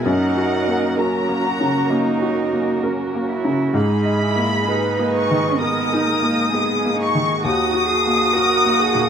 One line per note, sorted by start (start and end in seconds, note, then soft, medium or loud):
0.04 1.87 F#2 medium
0.04 3.75 A#3 medium
0.04 3.75 C#4 soft
0.04 0.99 A#4 medium
0.04 3.75 A#4 soft
0.04 0.97 F#5 medium
0.08 1.00 D#4 medium
0.37 0.86 F#4 soft
0.67 1.16 A#3 soft
0.97 1.47 C#4 medium
0.97 1.90 F#4 medium
0.97 1.47 A#4 medium
0.97 2.37 A#5 medium
1.29 1.78 A#3 soft
1.45 1.92 F#4 medium
1.60 2.09 C#3 soft
1.90 2.40 A#3 medium
1.90 2.85 D#4 medium
1.90 3.76 F#4 medium
2.22 2.71 F#4 medium
2.53 3.01 A#3 soft
2.83 3.30 C#4 medium
2.83 3.32 A#4 medium
3.15 3.62 A#3 soft
3.29 3.75 E4 medium
3.44 3.74 C#3 soft
3.73 5.55 G#2 medium
3.73 7.39 G#3 medium
3.73 4.20 D#4 medium
3.73 4.68 G#4 medium
3.73 7.43 G#4 medium
3.73 7.43 D#5 medium
3.73 5.08 B5 loud
4.05 4.54 D#5 medium
4.19 4.65 E4 medium
4.36 4.85 A#3 soft
4.65 5.59 D#4 medium
4.65 5.16 G#4 medium
4.65 5.59 B4 medium
4.99 5.47 A#3 medium
5.14 5.60 C#6 medium
5.31 5.79 D#3 soft
5.57 6.06 B3 medium
5.57 6.50 A#4 medium
5.57 6.09 A#4 medium
5.57 6.95 D#6 loud
5.93 6.41 D#4 medium
6.04 6.52 A#3 medium
6.22 6.70 A#3 medium
6.51 6.96 B3 medium
6.51 7.43 G#4 medium
6.51 7.01 G#4 medium
6.85 7.32 A#3 medium
6.95 7.40 D#4 medium
6.99 7.43 C#6 medium
7.15 7.44 D#3 medium
7.41 9.09 D#2 medium
7.41 9.09 A#3 medium
7.41 9.09 D#4 medium
7.41 7.87 F#4 medium
7.41 8.34 F#4 medium
7.41 9.09 F#4 medium
7.41 9.09 D#6 loud
7.74 8.22 F#4 medium
7.86 8.34 G#4 medium
8.06 8.53 A#3 medium
8.32 9.09 F#4 medium
8.32 8.83 F#4 medium
8.32 8.80 A#4 medium
8.65 9.09 A#3 medium
8.79 9.09 G#4 medium
8.95 9.09 A#2 medium